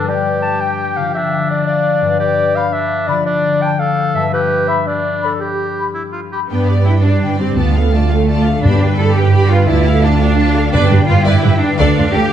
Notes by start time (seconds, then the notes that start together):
Already playing: G2 G3 D4
0.00 D4 B4
0.08 G4 D5 G5
0.42 A5
0.61 G5
0.96 D3 F5
1.01 F3
1.05 D4
1.10 A4
1.15 D4 E5
1.50 D5
1.67 D5 F5
2.01 G2
2.05 G3
2.10 D4
2.14 B4
2.19 G4 D5
2.56 F5 B5
2.72 D4 E5
3.07 D3 D5 B5
3.12 F3
3.16 D4
3.21 A4
3.26 D4 D5
3.62 G5 A5
3.79 A4 F5
4.14 G2 E5 A5
4.19 G3
4.23 D4
4.28 B4
4.33 G4 B4
4.68 E5 B5
4.86 D4 D5
5.22 A4 B5
5.39 G4
5.79 B5
5.94 E4
6.12 F4
6.32 G4 B5
6.50 G2 B3 D4 B4 G5
6.67 D4 G4 D5
6.85 D4 E4 B4 G5
7.01 D4 D5
7.07 G4
7.20 D3 B4 G5
7.25 D4
7.38 G3 C4 G4 D5
7.57 D2 D3 B3 F4 D5 A5
7.74 F4 A4 F5
7.92 A3 F4 G4 D5 A5
8.10 A3 F4 A4 F5
8.28 A3 F4 D5 A5
8.46 D4 A4 F5
8.63 G2 D4 D5 B5
8.67 G4
8.81 D4 B4 G5
8.98 E4 G4 A4 D5 B5
9.16 D4 G4 B4 G5
9.33 D3 G4 D5 B5
9.50 B3 F4 B4 G5
9.66 D2 D3 E4 F4 D5 A5
9.85 F4 A4 F5
10.03 D4 F4 G4 D5 A5
10.20 D4 F4 A4 F5
10.37 A3 F4 D5 A5
10.55 D4 A4 F5
10.72 G2 D4 B4 D5 G5
10.90 G2 D4 G4 B4
11.07 G2 E4 F4 B4
11.25 G2 D4 E4 B4 D5
11.43 G2 D3 G4 B4
11.61 B3 D4
11.79 D2 D3 D4 A4 D5 F5
11.97 D2 F4 A4
12.15 D2 G4 A4